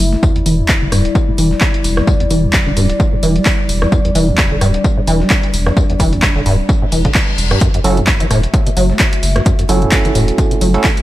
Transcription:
Already playing: analog synth pad A3 E4 E5
0.00 sub bass F#1, open hi-hat, tambourine
0.13 acid bass A3, snare
0.23 acid bass E2, analog synth pad G3 D5, kick, tambourine
0.36 acid bass E2, closed hi-hat
0.46 sub bass E1, acid bass E3, open hi-hat, tambourine
0.59 acid bass D2
0.68 acid bass E1, kick, snare, clap, tambourine
0.82 sub bass E1, acid bass D3
0.92 sub bass D1, acid bass G2, cross-stick, open hi-hat, tambourine
1.05 closed hi-hat
1.15 kick, tambourine
1.28 acid bass A2
1.38 sub bass E1, acid bass E3, open hi-hat, tambourine
1.51 acid bass G3, snare
1.61 kick, snare, clap, tambourine
1.74 closed hi-hat
1.84 sub bass E1, open hi-hat, tambourine
1.97 acid bass E2, cross-stick, snare
2.07 acid bass E2, kick, tambourine
2.20 acid bass E2, closed hi-hat
2.30 sub bass E1, acid bass E3, open hi-hat, tambourine
2.43 acid bass D2
2.53 acid bass E1, kick, snare, clap, tambourine
2.66 sub bass E1, acid bass D3, snare
2.77 sub bass D1, acid bass G2, open hi-hat, tambourine
2.90 closed hi-hat
3.00 kick, tambourine
3.13 acid bass A2
3.23 sub bass E1, acid bass E3, open hi-hat, tambourine
3.36 acid bass G3, closed hi-hat
3.45 kick, snare, clap, open hi-hat, tambourine
3.69 sub bass E1, open hi-hat, tambourine
3.82 acid bass E2, cross-stick, snare
3.92 acid bass E2, analog synth pad D4, kick, tambourine
4.05 acid bass E2, closed hi-hat
4.15 sub bass E1, acid bass E3, open hi-hat, tambourine
4.28 acid bass D2
4.38 acid bass E1, kick, snare, clap, tambourine
4.51 sub bass E1, acid bass D3
4.61 sub bass D1, acid bass G2, cross-stick, open hi-hat, tambourine
4.74 closed hi-hat
4.84 kick, tambourine
4.97 acid bass A2
5.07 sub bass E1, acid bass E3, open hi-hat, tambourine
5.20 acid bass G3, snare
5.30 kick, snare, clap, tambourine
5.43 closed hi-hat
5.54 sub bass E1, open hi-hat, tambourine
5.66 acid bass E2, cross-stick, snare
5.77 acid bass E2, kick, tambourine
5.90 acid bass E2, closed hi-hat
6.00 sub bass E1, acid bass E3, kick, open hi-hat, tambourine
6.13 acid bass D2, closed hi-hat
6.22 acid bass E1, kick, snare, clap, tambourine
6.36 sub bass E1, acid bass D3, snare
6.46 sub bass D1, acid bass G2, open hi-hat
6.69 kick, tambourine, reverse cymbal
6.82 acid bass A2
6.92 sub bass E1, acid bass E3, open hi-hat, tambourine
7.05 acid bass D3, kick, closed hi-hat
7.15 kick, snare, clap, open hi-hat, tambourine
7.38 sub bass E1, open hi-hat, tambourine
7.51 acid bass G2, cross-stick, closed hi-hat
7.61 acid bass F#2, analog synth pad A3 F#4 E5, kick, closed hi-hat, tambourine
7.74 acid bass F#2, closed hi-hat
7.84 sub bass F#1, acid bass F#3, tine electric piano C#4 E4 F#4 A4, open hi-hat, tambourine
7.97 acid bass E2, closed hi-hat
8.07 acid bass F#1, kick, snare, clap, closed hi-hat, tambourine
8.20 sub bass F#1, acid bass E3, closed hi-hat
8.31 sub bass E1, acid bass A2, cross-stick, open hi-hat, tambourine
8.43 closed hi-hat
8.54 kick, closed hi-hat, tambourine
8.67 acid bass B2, closed hi-hat
8.77 sub bass F#1, acid bass F#3, open hi-hat, tambourine
8.90 acid bass A3, snare
8.99 kick, snare, clap, closed hi-hat, tambourine
9.13 closed hi-hat
9.23 sub bass F#1, open hi-hat, tambourine
9.36 acid bass F#2, cross-stick, snare, closed hi-hat
9.46 acid bass F#2, kick, closed hi-hat, tambourine
9.59 acid bass F#2, closed hi-hat
9.69 sub bass F#1, acid bass F#3, tine electric piano C#4 E4 F#4 A4, open hi-hat, tambourine
9.82 acid bass E2, closed hi-hat
9.92 acid bass F#1, kick, snare, clap, closed hi-hat, tambourine
10.05 sub bass F#1, acid bass E3, snare, closed hi-hat
10.15 sub bass E1, acid bass A2, open hi-hat, tambourine
10.28 closed hi-hat
10.38 kick, closed hi-hat, tambourine
10.51 acid bass B2, closed hi-hat
10.61 sub bass F#1, acid bass F#3, open hi-hat, tambourine
10.74 acid bass A3, tine electric piano C#4 E4 F#4 A4, closed hi-hat
10.84 kick, snare, clap, open hi-hat, tambourine
10.97 closed hi-hat

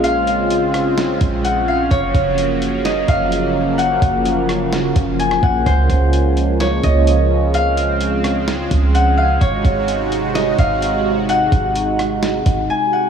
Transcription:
Already playing: 808-style bass A#1, analog synth pad C#3 G#3 F4, harp C#5 D#5
0.04 analog synth pad C4, harp F5, closed hi-hat
0.27 closed hi-hat
0.50 closed hi-hat
0.74 cross-stick, closed hi-hat
0.98 snare, closed hi-hat
1.21 808-style bass A#1, kick, closed hi-hat
1.44 harp F#5, closed hi-hat
1.68 harp F5
1.91 808-style bass F#1, analog synth pad F3 F#3 A#3, harp C#5, kick, closed hi-hat
2.15 808-style bass F#1, kick, closed hi-hat
2.38 closed hi-hat
2.62 closed hi-hat
2.85 harp D#5, snare, closed hi-hat
3.08 808-style bass F#1, harp F5, kick, closed hi-hat
3.32 closed hi-hat
3.78 harp F#5, closed hi-hat
4.02 808-style bass F#1, kick, closed hi-hat
4.25 closed hi-hat
4.49 cross-stick, closed hi-hat
4.73 snare, closed hi-hat
4.96 808-style bass F#1, kick, closed hi-hat
5.19 harp G#5, closed hi-hat
5.31 cross-stick
5.43 808-style bass A#1, harp F#5, kick
5.66 808-style bass C#2, analog synth pad G#3, harp C5, kick, closed hi-hat
5.90 808-style bass C#2, kick, closed hi-hat
6.13 closed hi-hat
6.37 closed hi-hat
6.60 harp C#5, snare, closed hi-hat
6.84 808-style bass C#2, harp D#5, kick, closed hi-hat
7.07 closed hi-hat
7.54 analog synth pad C4, harp F5, closed hi-hat
7.77 closed hi-hat
8.01 closed hi-hat
8.24 cross-stick, closed hi-hat
8.48 snare, closed hi-hat
8.71 808-style bass C#2, kick, closed hi-hat
8.95 harp F#5, closed hi-hat
9.17 harp F5
9.41 808-style bass G#1, analog synth pad C3 D#4 F#4, harp C#5, kick, closed hi-hat
9.65 808-style bass G#1, kick, closed hi-hat
9.88 closed hi-hat
10.12 closed hi-hat
10.35 harp D#5, snare, closed hi-hat
10.59 808-style bass G#1, harp F5, kick, closed hi-hat
10.82 closed hi-hat
11.29 harp F#5, closed hi-hat
11.52 808-style bass G#1, kick, closed hi-hat
11.76 closed hi-hat
11.99 cross-stick, closed hi-hat
12.23 snare, closed hi-hat
12.46 808-style bass G#1, kick, closed hi-hat
12.70 harp G#5
12.93 harp F#5

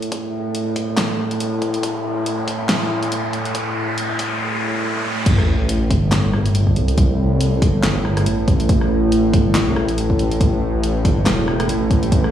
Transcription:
Already playing: synth drone A2, riser
0.02 closed hi-hat
0.12 kick, closed hi-hat
0.55 closed hi-hat
0.76 kick, open hi-hat
0.97 snare, clap, closed hi-hat
1.31 closed hi-hat
1.40 closed hi-hat
1.62 kick, closed hi-hat
1.74 closed hi-hat
1.83 kick, closed hi-hat
2.26 closed hi-hat
2.48 kick, open hi-hat
2.69 snare, clap, closed hi-hat
3.03 closed hi-hat
3.12 closed hi-hat
3.33 closed hi-hat
3.45 closed hi-hat
3.55 kick, closed hi-hat
3.98 closed hi-hat
4.19 kick, open hi-hat
5.26 detuned saw bass A1, synth drone A2, kick, closed hi-hat, crash, sub drop
5.38 cross-stick
5.69 closed hi-hat
5.90 detuned saw bass G1, kick, open hi-hat
6.12 snare, clap, closed hi-hat
6.33 cross-stick
6.46 closed hi-hat
6.55 closed hi-hat
6.67 kick
6.76 detuned saw bass C2, closed hi-hat
6.88 closed hi-hat
6.98 kick, closed hi-hat
7.41 closed hi-hat
7.62 detuned saw bass G1, kick, open hi-hat
7.83 snare, clap, closed hi-hat
8.05 cross-stick
8.17 cross-stick, closed hi-hat
8.26 detuned saw bass A1, closed hi-hat
8.48 kick, closed hi-hat
8.60 closed hi-hat
8.69 kick, closed hi-hat
8.81 cross-stick
9.12 closed hi-hat
9.33 detuned saw bass G1, kick, open hi-hat
9.55 snare, clap, closed hi-hat
9.67 detuned saw bass C2
9.76 detuned saw bass A1, cross-stick
9.88 closed hi-hat
9.98 closed hi-hat
10.10 kick
10.19 closed hi-hat
10.31 closed hi-hat
10.41 kick, closed hi-hat
10.84 closed hi-hat
11.05 detuned saw bass G1, kick, open hi-hat
11.26 detuned saw bass E1, snare, clap, closed hi-hat
11.48 cross-stick
11.60 cross-stick, closed hi-hat
11.69 detuned saw bass A1, closed hi-hat
11.91 kick, closed hi-hat
12.03 closed hi-hat
12.12 detuned saw bass A1, kick, closed hi-hat
12.24 cross-stick

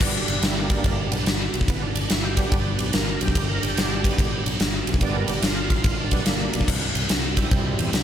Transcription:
0.00 fingered electric bass G1, tonewheel organ G3 B3 D4, kick, crash
0.16 tonewheel organ D4
0.28 fingered electric bass G1, ride
0.42 fingered electric bass G1, tonewheel organ E4, snare, ride
0.59 tonewheel organ A#3 D4
0.70 kick, ride
0.84 fingered electric bass G1, kick, ride
1.11 fingered electric bass B1, tonewheel organ G3 B3 D4, ride
1.26 fingered electric bass G1, snare, ride
1.54 fingered electric bass B1, ride
1.61 kick
1.68 fingered electric bass G1, tonewheel organ B3, kick, ride
1.82 tonewheel organ D4
1.95 fingered electric bass G1, ride
2.10 fingered electric bass G1, tonewheel organ E4, snare, ride
2.25 tonewheel organ G4
2.37 tonewheel organ G3 B3 D4, kick, ride
2.52 fingered electric bass G1, kick, ride
2.79 fingered electric bass B1, ride
2.93 fingered electric bass G1, tonewheel organ A#4, snare, ride
3.21 fingered electric bass B1, tonewheel organ G4, ride
3.28 kick
3.35 fingered electric bass G1, kick, ride
3.50 tonewheel organ A#4
3.63 fingered electric bass G1, tonewheel organ D4 G4, ride
3.77 fingered electric bass G1, snare, ride
4.03 tonewheel organ G3 B3 D4, kick, ride
4.18 fingered electric bass G1, kick, ride
4.46 fingered electric bass B1, ride
4.60 fingered electric bass G1, snare, ride
4.87 fingered electric bass B1, ride
4.94 kick
5.00 fingered electric bass G1, tonewheel organ G3 B3 D4, kick, ride
5.05 tonewheel organ D5
5.16 tonewheel organ A#4
5.28 fingered electric bass G1, tonewheel organ G4, ride
5.40 fingered electric bass G1, tonewheel organ E4, snare, ride
5.45 tonewheel organ F4
5.70 kick, ride
5.84 fingered electric bass G1, kick, ride
6.00 tonewheel organ D4
6.11 fingered electric bass B1, tonewheel organ G3 B3 D4, kick, ride
6.26 fingered electric bass G1, tonewheel organ A#3 D4, snare, ride
6.53 fingered electric bass B1, ride
6.61 kick
6.67 fingered electric bass C2, kick, crash
6.95 fingered electric bass C2, ride
7.09 fingered electric bass C2, snare, ride
7.37 tonewheel organ G3 C4 E4, kick, ride
7.51 fingered electric bass C2, kick, ride
7.79 fingered electric bass E2, ride
7.93 fingered electric bass C2, snare, ride

